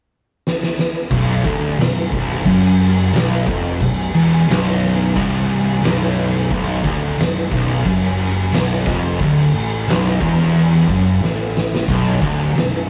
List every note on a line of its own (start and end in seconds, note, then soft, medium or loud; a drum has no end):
0.47 snare medium
0.63 snare medium
0.79 snare medium
1.11 1.43 B0 medium
1.11 1.44 B1 loud
1.11 kick loud
1.11 crash medium
1.45 1.76 D1 loud
1.45 1.78 D2 loud
1.45 kick loud
1.45 crash medium
1.79 2.10 B0 medium
1.79 2.06 B1 medium
1.79 snare loud
1.79 crash medium
2.12 2.43 B0 loud
2.12 2.46 B1 loud
2.12 kick loud
2.12 crash medium
2.45 3.09 F#1 loud
2.45 3.12 F#2 loud
2.45 kick loud
2.45 crash medium
2.79 crash medium
3.13 3.45 B0 medium
3.13 3.46 B1 loud
3.13 snare loud
3.13 crash medium
3.47 3.78 F1 medium
3.47 3.80 F2 loud
3.47 kick loud
3.47 crash medium
3.80 4.12 B0 medium
3.80 4.08 B1 medium
3.80 kick medium
3.80 crash medium
4.14 4.46 E1 medium
4.14 4.47 E2 loud
4.14 crash medium
4.49 5.12 B0 medium
4.49 5.16 B1 loud
4.49 snare loud
4.49 crash medium
4.83 snare soft
4.83 crash medium
5.16 5.79 C1 loud
5.16 5.82 C2 loud
5.16 kick loud
5.16 crash medium
5.50 crash medium
5.82 6.46 B0 medium
5.82 6.49 B1 loud
5.82 snare loud
5.82 crash medium
6.17 crash medium
6.50 6.82 B0 medium
6.50 6.83 B1 loud
6.50 kick loud
6.50 crash medium
6.84 7.15 D1 loud
6.84 7.17 D2 loud
6.84 kick loud
6.84 crash medium
7.18 7.49 B0 medium
7.18 7.45 B1 medium
7.18 snare loud
7.18 crash medium
7.51 7.82 B0 loud
7.51 7.84 B1 loud
7.51 kick loud
7.51 snare soft
7.51 crash medium
7.85 8.48 F#1 loud
7.85 8.51 F#2 loud
7.85 kick loud
7.85 crash medium
8.19 crash medium
8.52 8.84 B0 medium
8.52 8.85 B1 loud
8.52 snare loud
8.52 crash medium
8.86 9.17 F1 medium
8.86 9.18 F2 loud
8.86 kick loud
8.86 crash medium
9.19 9.51 D1 medium
9.19 9.52 D2 loud
9.19 kick loud
9.19 crash medium
9.53 9.84 A1 loud
9.53 9.85 A2 loud
9.53 crash medium
9.87 10.18 B0 medium
9.87 10.19 B1 loud
9.87 snare loud
9.87 crash medium
10.20 10.83 E1 medium
10.20 10.87 E2 loud
10.20 kick loud
10.20 crash medium
10.55 crash medium
10.88 11.18 F#1 loud
10.88 11.20 F#2 loud
10.88 kick loud
10.88 crash medium
11.21 11.84 A1 medium
11.21 11.87 A2 loud
11.21 snare medium
11.57 snare medium
11.75 snare medium
11.88 12.19 B0 medium
11.88 12.20 B1 loud
11.88 kick loud
11.88 crash medium
12.21 12.53 D1 loud
12.21 12.54 D2 loud
12.21 kick loud
12.21 crash medium
12.55 12.86 B0 medium
12.55 12.81 B1 medium
12.55 snare loud
12.55 crash medium